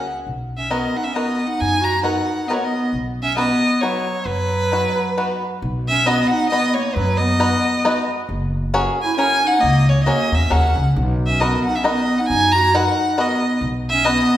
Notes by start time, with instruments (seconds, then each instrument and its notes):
Already playing: clarinet C#4, violin F#5
0.27 upright bass B1
0.57 clarinet C#4, violin E5
0.70 clarinet B3, five-string banjo B3 D#4 F#4 A#4, violin D#5
0.96 clarinet D#4, violin F#5
1.04 clarinet C#4, violin E5
1.14 clarinet B3, five-string banjo B3 D#4 F#4 A#4, violin D#5
1.47 clarinet D#4, violin F#5
1.56 clarinet D#4
1.61 upright bass F#2, violin G#5
1.81 clarinet F#4, violin A#5
2.00 five-string banjo B3 D#4 F#4, clarinet D#4, violin F#5
2.05 five-string banjo A#4
2.47 clarinet B3, five-string banjo B3 D#4 F#4 A#4, violin D#5
2.53 clarinet A#3, violin C#5
2.64 clarinet B3, violin D#5
2.93 upright bass B1
3.23 clarinet C#4, violin E5
3.37 five-string banjo B3 D#4 F#4 B4, clarinet B3, violin D#5
3.81 clarinet F#3, five-string banjo B3 D#4 F#4 B4, violin C#5
4.25 upright bass F#2, violin B4
4.30 clarinet F#3
4.72 five-string banjo B3 D#4 F#4 B4
5.17 five-string banjo B3 D#4 F#4 B4
5.62 upright bass B1
5.88 clarinet C#4, violin E5
6.06 five-string banjo B3 D#4 F#4 B4 D#5, clarinet B3, violin D#5
6.28 clarinet D#4, violin F#5
6.49 clarinet B3, five-string banjo B3 D#4 F#4 B4 D#5, violin D#5
6.74 clarinet A#3, violin C#5
6.95 upright bass F#2, clarinet F#3, violin B4
7.17 clarinet B3, violin D#5
7.40 five-string banjo B3 D#4 F#4 B4 D#5
7.85 five-string banjo B3 D#4 F#4 B4 D#5
8.29 upright bass F#1
8.74 five-string banjo C#4 F#4 G#4 A#4 C#5
9.02 clarinet E4, violin G#5
9.17 clarinet C#4, five-string banjo C#4 F#4 G#4 A#4 C#5, violin G#5
9.45 clarinet D#4, violin F#5
9.60 upright bass C#2, clarinet A#3, violin D#5
9.88 clarinet A#3, violin C#5
10.04 clarinet A#3, five-string banjo C#4 F#4 G#4 A#4 C#5, violin D#5
10.32 upright bass E2, violin E5
10.37 clarinet C#4
10.50 upright bass D#2, five-string banjo C#4 F#4 G#4 A#4 C#5, clarinet C#4, violin F#5
10.76 upright bass C#2
10.96 upright bass B1
11.27 clarinet C#4, violin E5
11.40 five-string banjo D#4 F#4 A#4 B4 D#5, violin D#5
11.45 clarinet B3
11.64 clarinet D#4, violin F#5
11.75 clarinet C#4, violin E5
11.84 five-string banjo D#4 F#4 A#4 B4 D#5, violin D#5
11.90 clarinet B3
12.18 clarinet D#4, violin F#5
12.26 upright bass F#2, clarinet D#4, violin G#5
12.52 clarinet F#4, violin A#5
12.74 clarinet D#4, five-string banjo D#4 F#4 A#4 B4 D#5, violin F#5
13.18 clarinet B3, five-string banjo D#4 F#4 A#4 B4 D#5, violin D#5
13.61 upright bass B1
13.90 clarinet C#4, violin E5
14.04 five-string banjo B3 D#4 F#4 B4 D#5, violin D#5
14.08 clarinet B3